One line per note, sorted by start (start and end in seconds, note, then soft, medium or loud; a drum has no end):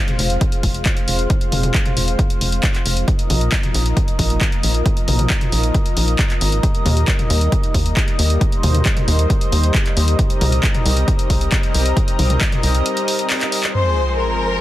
0.00 3.04 G#3 medium
0.00 3.04 C4 medium
0.00 3.04 F4 medium
0.00 3.04 C5 medium
0.00 3.04 F5 medium
0.08 closed hi-hat medium
0.08 mid tom medium
0.19 0.38 F1 medium
0.19 open hi-hat loud
0.30 closed hi-hat medium
0.41 kick loud
0.41 closed hi-hat medium
0.52 closed hi-hat medium
0.63 0.82 F1 medium
0.63 kick medium
0.63 open hi-hat loud
0.74 closed hi-hat medium
0.86 kick loud
0.86 clap loud
0.86 closed hi-hat medium
0.97 closed hi-hat medium
1.08 1.27 F1 medium
1.08 open hi-hat loud
1.19 closed hi-hat medium
1.30 kick loud
1.30 closed hi-hat medium
1.41 closed hi-hat medium
1.52 1.71 F1 loud
1.52 open hi-hat loud
1.52 mid tom medium
1.63 closed hi-hat medium
1.63 mid tom medium
1.74 kick loud
1.74 clap loud
1.74 closed hi-hat medium
1.86 closed hi-hat medium
1.86 mid tom medium
1.97 2.16 F1 medium
1.97 open hi-hat loud
2.08 closed hi-hat soft
2.19 kick loud
2.19 closed hi-hat medium
2.30 closed hi-hat medium
2.41 2.60 F1 medium
2.41 open hi-hat loud
2.52 closed hi-hat medium
2.63 kick loud
2.63 clap loud
2.63 closed hi-hat medium
2.75 clap soft
2.75 closed hi-hat medium
2.86 3.04 F1 medium
2.86 open hi-hat loud
2.97 closed hi-hat medium
3.08 6.60 F3 medium
3.08 6.60 A#3 medium
3.08 13.70 D#4 medium
3.08 8.37 A#4 medium
3.08 10.15 D#5 medium
3.08 kick loud
3.08 closed hi-hat medium
3.19 closed hi-hat soft
3.30 3.49 A#1 loud
3.30 open hi-hat loud
3.30 mid tom medium
3.41 closed hi-hat soft
3.52 kick loud
3.52 clap loud
3.52 closed hi-hat medium
3.63 closed hi-hat medium
3.63 mid tom medium
3.74 3.93 A#1 medium
3.74 open hi-hat loud
3.86 closed hi-hat soft
3.97 kick loud
3.97 closed hi-hat medium
4.08 closed hi-hat soft
4.19 4.38 A#1 medium
4.19 kick medium
4.19 open hi-hat loud
4.30 closed hi-hat medium
4.41 kick loud
4.41 clap loud
4.41 closed hi-hat medium
4.52 closed hi-hat soft
4.63 4.82 A#1 medium
4.63 open hi-hat loud
4.74 closed hi-hat medium
4.86 kick loud
4.86 closed hi-hat medium
4.97 closed hi-hat soft
5.08 5.27 A#1 loud
5.08 open hi-hat loud
5.08 mid tom medium
5.19 closed hi-hat soft
5.19 mid tom medium
5.30 kick loud
5.30 clap loud
5.30 closed hi-hat medium
5.41 closed hi-hat soft
5.41 mid tom medium
5.52 5.71 A#1 medium
5.52 open hi-hat loud
5.63 closed hi-hat soft
5.74 kick loud
5.74 closed hi-hat medium
5.86 closed hi-hat soft
5.97 6.16 A#1 medium
5.97 open hi-hat loud
6.08 closed hi-hat soft
6.19 kick loud
6.19 clap loud
6.19 closed hi-hat medium
6.30 clap soft
6.30 closed hi-hat soft
6.41 6.60 G#1 medium
6.41 open hi-hat loud
6.52 closed hi-hat medium
6.63 13.70 G3 medium
6.63 10.15 A#3 medium
6.63 kick loud
6.63 closed hi-hat medium
6.75 closed hi-hat soft
6.86 7.04 D#2 loud
6.86 open hi-hat loud
6.86 mid tom medium
6.97 closed hi-hat soft
7.08 kick loud
7.08 clap loud
7.08 closed hi-hat medium
7.19 closed hi-hat medium
7.19 mid tom medium
7.30 7.49 D#2 medium
7.30 open hi-hat loud
7.41 closed hi-hat soft
7.52 kick loud
7.52 closed hi-hat medium
7.63 closed hi-hat soft
7.74 7.93 D#2 medium
7.74 kick medium
7.74 open hi-hat loud
7.86 closed hi-hat medium
7.97 kick loud
7.97 clap loud
7.97 closed hi-hat medium
8.08 closed hi-hat soft
8.19 8.38 D#2 medium
8.19 open hi-hat loud
8.30 closed hi-hat medium
8.41 10.17 C5 medium
8.41 kick loud
8.41 closed hi-hat medium
8.52 closed hi-hat medium
8.63 8.82 D#2 loud
8.63 open hi-hat loud
8.63 mid tom medium
8.75 closed hi-hat medium
8.75 mid tom medium
8.86 kick loud
8.86 clap loud
8.86 closed hi-hat medium
8.97 closed hi-hat medium
8.97 mid tom medium
9.08 9.27 D#2 medium
9.08 open hi-hat loud
9.19 closed hi-hat soft
9.30 kick loud
9.30 closed hi-hat medium
9.41 closed hi-hat medium
9.52 9.71 D#2 medium
9.52 open hi-hat loud
9.63 closed hi-hat medium
9.74 kick loud
9.74 clap loud
9.74 closed hi-hat medium
9.86 clap soft
9.86 closed hi-hat medium
9.97 10.16 D#2 medium
9.97 open hi-hat loud
10.08 closed hi-hat medium
10.19 13.71 C4 medium
10.19 13.71 A#4 medium
10.19 13.71 D#5 medium
10.19 kick loud
10.19 closed hi-hat medium
10.30 closed hi-hat medium
10.41 10.60 C2 loud
10.41 open hi-hat loud
10.41 mid tom medium
10.52 closed hi-hat medium
10.63 kick loud
10.63 clap loud
10.63 closed hi-hat medium
10.75 closed hi-hat medium
10.75 mid tom medium
10.86 11.04 C2 medium
10.86 open hi-hat loud
10.97 closed hi-hat medium
11.08 kick loud
11.08 closed hi-hat medium
11.19 closed hi-hat medium
11.30 11.49 C2 medium
11.30 kick medium
11.30 open hi-hat loud
11.41 closed hi-hat medium
11.52 kick loud
11.52 clap loud
11.52 closed hi-hat medium
11.63 closed hi-hat medium
11.75 11.93 C2 medium
11.75 open hi-hat loud
11.86 closed hi-hat medium
11.97 kick loud
11.97 closed hi-hat medium
12.08 closed hi-hat medium
12.19 12.38 C2 loud
12.19 open hi-hat loud
12.19 mid tom medium
12.30 closed hi-hat medium
12.30 mid tom medium
12.41 kick loud
12.41 clap loud
12.41 closed hi-hat medium
12.52 closed hi-hat medium
12.52 mid tom medium
12.63 12.82 C2 medium
12.63 open hi-hat loud
12.75 closed hi-hat medium
12.86 closed hi-hat medium
12.97 closed hi-hat medium
13.08 open hi-hat loud
13.19 closed hi-hat medium
13.30 clap loud
13.30 open hi-hat medium
13.41 clap medium
13.41 closed hi-hat medium
13.52 open hi-hat loud
13.63 clap loud
13.63 closed hi-hat medium
13.74 14.61 F3 medium
13.74 14.61 G#3 medium
13.74 14.61 C4 medium
13.74 14.61 G#4 medium
13.74 14.61 C5 medium
13.74 14.17 C5 medium
13.74 crash medium
13.74 sub drop medium
14.19 14.61 A#4 medium